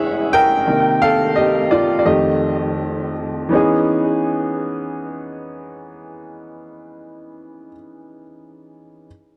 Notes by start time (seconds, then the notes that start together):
Already playing: C#3 E3 B3 E4 G#4 C#5 E5 F#5
0.33 A#4 G5
0.66 C3 D#3 A#3
1.02 A4 F5
1.36 G4 D#5
1.71 F4 D5
1.99 D5
2.05 F2 D#3 A3 G4 D#5
3.49 E3 B3 C#4
3.53 D#4 G#4